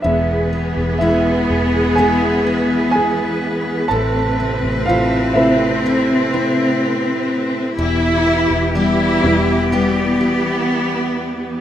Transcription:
<<
  \new Staff \with { instrumentName = "Grand piano" } { \time 4/4 \key e \phrygian \tempo 4 = 62 <e' e''>4 <e' e''>4 <gis' gis''>4 <gis' gis''>4 | <a' a''>4 <f' f''>8 <e' e''>4 r4. | r1 | }
  \new Staff \with { instrumentName = "Grand piano" } { \clef bass \time 4/4 \key e \phrygian <e gis b>8 r2. r8 | r4. <c a b'>4. r4 | r4. <e g b>4. r4 | }
  \new Staff \with { instrumentName = "Cello section" } { \time 4/4 \key e \phrygian b1 | c'1 | e'4 e'4 b2 | }
  \new Staff \with { instrumentName = "Steel-string acoustic guitar" } { \time 4/4 \key e \phrygian e,8 b8 <gis b e'>4 <gis b e'>8 e'4. | a,8 c'8 <c' e'>4 <c' e'>8 e'4. | e,8 b8 <g b g'>4 <g b g'>8 g'4. | }
  \new Staff \with { instrumentName = "String section" } { \time 4/4 \key e \phrygian <e gis' b'>1 | <c a>1 | <e b g'>1 | }
  \new Staff \with { instrumentName = "Fingered electric bass" } { \clef bass \time 4/4 \key e \phrygian e,,8. e,,8. e,,2 r8 | a,,8. a,,16 a,,2~ a,,8 r8 | e,,8. e,,8. e,,2 r8 | }
>>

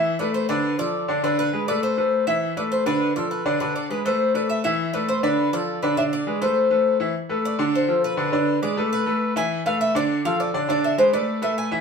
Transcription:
<<
  \new Staff \with { instrumentName = "Cuban tres" } { \time 4/4 \key a \minor \tempo 4 = 203 e''8 d''8 c''8 b'4 d''4. | b'8 b'4 d''8 c''4. e''8~ | e''8 d''8 c''8 b'4 d''8 b'4 | b'8 d''8 b'8 c''4 d''8 e''8 e''8~ |
e''8 d''8 c''8 b'4 d''4 b'8 | e''8 d''4 c''2 r8 | r4 d''4 c''4 b'4~ | b'4 d''4 b'4. gis''8~ |
gis''8 f''8 e''8 d''4 f''8 d''4 | d''8 e''8 c''8 d''4 e''8 gis''8. r16 | }
  \new Staff \with { instrumentName = "Upright piano" } { \time 4/4 \key a \minor <e e' e''>8 <a a' b'>4 <d d' d''>4 <f f' a'>4 <d d' d''>8 | <d d' d''>4 <gis gis' b'>8 <a a' b'>4 <a a' b'>4 <e e' e''>8~ | <e e' e''>8 <a a' b'>4 <d d' d''>4 <f f' a'>4 <d d' d''>8 | <d d' d''>4 <gis gis' b'>8 <a a' b'>4 <a a' b'>4 <e e' e''>8~ |
<e e' e''>8 <a a' b'>4 <d d' d''>4 <f f' a'>4 <d d' d''>8 | <d d' d''>4 <gis gis' b'>8 <a a' b'>4 <a a' b'>4 <e e' e''>8 | r8 <a a' b'>4 <d d' d''>4 <f f' a'>4 <d d' d''>8 | <d d' d''>4 <gis gis' b'>8 <a a' b'>4 <a a' b'>4 <e e' e''>8~ |
<e e' e''>8 <a a' b'>4 <d d' d''>4 <f f' a'>4 <d d' d''>8 | <d d' d''>4 <gis gis' b'>8 <a a' b'>4 <a a' b'>4 <e e' e''>8 | }
>>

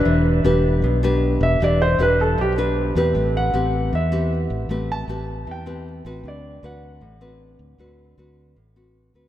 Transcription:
<<
  \new Staff \with { instrumentName = "Grand piano" } { \time 4/4 \key a \dorian \tempo 4 = 155 b'2 r4. e''8 | d''8 c''8 b'8 a'8 g'8 r4. | r8 fis''4. e''4 r4 | r8 a''4. g''4 r4 |
d''4 fis''4. r4. | r1 | }
  \new Staff \with { instrumentName = "Nylon-string guitar" } { \time 4/4 \key a \dorian << { <d' g' b'>4 <d' g' b'>4. <d' g' b'>4. | <d' g' b'>8 r8 <d' g' b'>4 r8 <d' g' b'>4 <c' g' b'>8~ | <c' g' b'>4 <c' g' b'>4 r8 <c' g' b'>4. | <c' g' b'>4 <c' g' b'>4. <c' g' b'>4 <c' fis' b'>8~ |
<c' fis' b'>4 <c' fis' b'>4 r8 <c' fis' b'>4. | <c' fis' b'>4 <c' fis' b'>4 r8 <c' fis' b'>4 <c' fis' b'>8 | } \\ { e2 b,2 | e2 b,2 | a2 e2 | a2 e2 |
d2 a,2 | d2 a,2 | } >> }
  \new Staff \with { instrumentName = "Fingered electric bass" } { \clef bass \time 4/4 \key a \dorian e,,4 e,,4 b,,4. e,,8 | e,,4 e,,4 b,,4. e,8 | a,,4 a,,4 e,4. a,,8 | a,,4 a,,4 e,4. a,,8 |
d,4 d,4 a,,4. d,8 | d,4 d,4 a,,4. d,8 | }
>>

